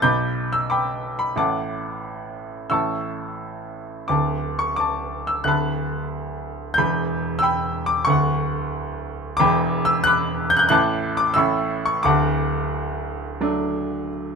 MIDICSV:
0, 0, Header, 1, 2, 480
1, 0, Start_track
1, 0, Key_signature, 2, "major"
1, 0, Tempo, 667408
1, 981, Time_signature, 4, 2, 24, 8
1, 1464, Tempo, 684151
1, 4344, Tempo, 654308
1, 8184, Tempo, 690449
1, 10254, End_track
2, 0, Start_track
2, 0, Title_t, "Grand piano"
2, 0, Program_c, 0, 0
2, 0, Control_c, 0, 64, 127
2, 16, Note_on_c, 0, 91, 96
2, 17, Note_on_c, 0, 35, 66
2, 21, Note_on_c, 0, 47, 71
2, 23, Note_on_c, 0, 83, 69
2, 25, Note_on_c, 0, 86, 66
2, 33, Control_c, 0, 64, 0
2, 176, Control_c, 0, 64, 127
2, 378, Note_on_c, 0, 88, 85
2, 386, Note_off_c, 0, 91, 0
2, 491, Note_off_c, 0, 86, 0
2, 491, Note_off_c, 0, 88, 0
2, 498, Note_off_c, 0, 83, 0
2, 502, Note_on_c, 0, 86, 74
2, 509, Note_on_c, 0, 83, 61
2, 512, Note_on_c, 0, 79, 60
2, 844, Note_off_c, 0, 83, 0
2, 854, Note_on_c, 0, 83, 74
2, 874, Note_off_c, 0, 86, 0
2, 950, Note_off_c, 0, 35, 0
2, 951, Note_off_c, 0, 47, 0
2, 959, Note_off_c, 0, 79, 0
2, 977, Note_on_c, 0, 33, 63
2, 977, Note_on_c, 0, 45, 63
2, 981, Note_off_c, 0, 83, 0
2, 989, Note_on_c, 0, 86, 74
2, 990, Control_c, 0, 64, 0
2, 991, Note_on_c, 0, 81, 52
2, 992, Note_on_c, 0, 78, 54
2, 1104, Control_c, 0, 64, 127
2, 1676, Note_off_c, 0, 86, 0
2, 1910, Note_off_c, 0, 33, 0
2, 1910, Note_off_c, 0, 45, 0
2, 1917, Note_off_c, 0, 81, 0
2, 1918, Note_off_c, 0, 78, 0
2, 1928, Note_on_c, 0, 88, 82
2, 1932, Note_on_c, 0, 33, 56
2, 1933, Note_on_c, 0, 45, 61
2, 1941, Note_on_c, 0, 85, 54
2, 1948, Control_c, 0, 64, 0
2, 1949, Note_on_c, 0, 81, 56
2, 2077, Control_c, 0, 64, 127
2, 2884, Note_off_c, 0, 33, 0
2, 2885, Note_off_c, 0, 45, 0
2, 2889, Note_off_c, 0, 85, 0
2, 2893, Note_off_c, 0, 81, 0
2, 2897, Note_on_c, 0, 86, 76
2, 2907, Note_on_c, 0, 38, 66
2, 2908, Note_on_c, 0, 26, 59
2, 2920, Note_on_c, 0, 81, 56
2, 2926, Control_c, 0, 64, 0
2, 2940, Note_off_c, 0, 88, 0
2, 3060, Control_c, 0, 64, 127
2, 3239, Note_off_c, 0, 86, 0
2, 3255, Note_on_c, 0, 85, 75
2, 3378, Note_on_c, 0, 86, 82
2, 3388, Note_off_c, 0, 85, 0
2, 3393, Note_off_c, 0, 81, 0
2, 3404, Note_on_c, 0, 81, 58
2, 3735, Note_on_c, 0, 88, 79
2, 3755, Note_off_c, 0, 86, 0
2, 3838, Note_off_c, 0, 38, 0
2, 3839, Note_off_c, 0, 26, 0
2, 3848, Note_off_c, 0, 81, 0
2, 3853, Note_on_c, 0, 90, 87
2, 3857, Note_on_c, 0, 26, 60
2, 3858, Note_on_c, 0, 38, 62
2, 3867, Note_off_c, 0, 88, 0
2, 3877, Note_on_c, 0, 81, 67
2, 3878, Note_on_c, 0, 83, 67
2, 3880, Control_c, 0, 64, 0
2, 4017, Control_c, 0, 64, 127
2, 4784, Note_on_c, 0, 91, 97
2, 4790, Note_off_c, 0, 26, 0
2, 4791, Note_off_c, 0, 38, 0
2, 4801, Note_off_c, 0, 81, 0
2, 4801, Note_off_c, 0, 83, 0
2, 4810, Note_on_c, 0, 28, 67
2, 4811, Note_on_c, 0, 40, 73
2, 4814, Note_on_c, 0, 83, 76
2, 4836, Control_c, 0, 64, 0
2, 4847, Note_off_c, 0, 90, 0
2, 4969, Control_c, 0, 64, 127
2, 5259, Note_on_c, 0, 88, 97
2, 5280, Note_off_c, 0, 83, 0
2, 5284, Note_on_c, 0, 79, 72
2, 5291, Note_on_c, 0, 83, 74
2, 5297, Note_off_c, 0, 91, 0
2, 5608, Note_on_c, 0, 86, 90
2, 5646, Note_off_c, 0, 88, 0
2, 5738, Note_off_c, 0, 79, 0
2, 5739, Note_off_c, 0, 28, 0
2, 5740, Note_off_c, 0, 40, 0
2, 5741, Note_off_c, 0, 83, 0
2, 5742, Note_off_c, 0, 86, 0
2, 5742, Note_on_c, 0, 85, 89
2, 5760, Note_on_c, 0, 38, 75
2, 5761, Note_on_c, 0, 26, 68
2, 5780, Note_on_c, 0, 78, 63
2, 5785, Control_c, 0, 64, 0
2, 5919, Control_c, 0, 64, 127
2, 6689, Note_off_c, 0, 85, 0
2, 6698, Note_off_c, 0, 26, 0
2, 6698, Note_off_c, 0, 38, 0
2, 6708, Note_off_c, 0, 78, 0
2, 6711, Note_on_c, 0, 86, 98
2, 6731, Note_on_c, 0, 28, 76
2, 6732, Note_on_c, 0, 40, 83
2, 6736, Note_on_c, 0, 83, 72
2, 6741, Note_on_c, 0, 79, 66
2, 6745, Control_c, 0, 64, 0
2, 6879, Control_c, 0, 64, 127
2, 7066, Note_on_c, 0, 88, 103
2, 7095, Note_off_c, 0, 86, 0
2, 7191, Note_off_c, 0, 88, 0
2, 7202, Note_on_c, 0, 90, 114
2, 7217, Note_off_c, 0, 83, 0
2, 7226, Note_on_c, 0, 86, 75
2, 7228, Note_on_c, 0, 83, 74
2, 7542, Note_off_c, 0, 90, 0
2, 7542, Note_on_c, 0, 91, 106
2, 7590, Note_off_c, 0, 91, 0
2, 7590, Note_on_c, 0, 90, 94
2, 7609, Note_on_c, 0, 91, 102
2, 7628, Note_off_c, 0, 90, 0
2, 7663, Note_off_c, 0, 28, 0
2, 7664, Note_off_c, 0, 40, 0
2, 7668, Note_off_c, 0, 79, 0
2, 7671, Note_off_c, 0, 86, 0
2, 7672, Note_off_c, 0, 83, 0
2, 7679, Note_on_c, 0, 90, 109
2, 7684, Note_off_c, 0, 91, 0
2, 7688, Note_on_c, 0, 33, 72
2, 7689, Note_on_c, 0, 45, 84
2, 7698, Note_on_c, 0, 81, 78
2, 7703, Control_c, 0, 64, 0
2, 7704, Note_on_c, 0, 86, 77
2, 7817, Control_c, 0, 64, 127
2, 8024, Note_off_c, 0, 86, 0
2, 8026, Note_off_c, 0, 90, 0
2, 8035, Note_on_c, 0, 86, 90
2, 8150, Note_off_c, 0, 33, 0
2, 8155, Note_off_c, 0, 81, 0
2, 8156, Note_on_c, 0, 88, 93
2, 8161, Note_off_c, 0, 45, 0
2, 8172, Note_on_c, 0, 33, 71
2, 8172, Note_on_c, 0, 45, 81
2, 8174, Note_off_c, 0, 86, 0
2, 8183, Note_on_c, 0, 83, 67
2, 8186, Note_on_c, 0, 85, 67
2, 8191, Control_c, 0, 64, 0
2, 8297, Control_c, 0, 64, 127
2, 8508, Note_off_c, 0, 85, 0
2, 8518, Note_on_c, 0, 85, 83
2, 8535, Note_off_c, 0, 88, 0
2, 8622, Note_off_c, 0, 33, 0
2, 8627, Note_off_c, 0, 83, 0
2, 8635, Note_off_c, 0, 45, 0
2, 8637, Note_off_c, 0, 85, 0
2, 8639, Note_on_c, 0, 86, 87
2, 8650, Note_on_c, 0, 26, 81
2, 8655, Note_on_c, 0, 38, 76
2, 8657, Note_on_c, 0, 78, 68
2, 8662, Note_on_c, 0, 81, 60
2, 8665, Control_c, 0, 64, 0
2, 8798, Control_c, 0, 64, 127
2, 9596, Note_on_c, 0, 54, 58
2, 9600, Note_on_c, 0, 57, 49
2, 9600, Note_on_c, 0, 62, 69
2, 10061, Note_off_c, 0, 86, 0
2, 10070, Note_off_c, 0, 78, 0
2, 10073, Note_off_c, 0, 81, 0
2, 10254, Note_off_c, 0, 26, 0
2, 10254, Note_off_c, 0, 38, 0
2, 10254, Note_off_c, 0, 54, 0
2, 10254, Note_off_c, 0, 57, 0
2, 10254, Note_off_c, 0, 62, 0
2, 10254, End_track
0, 0, End_of_file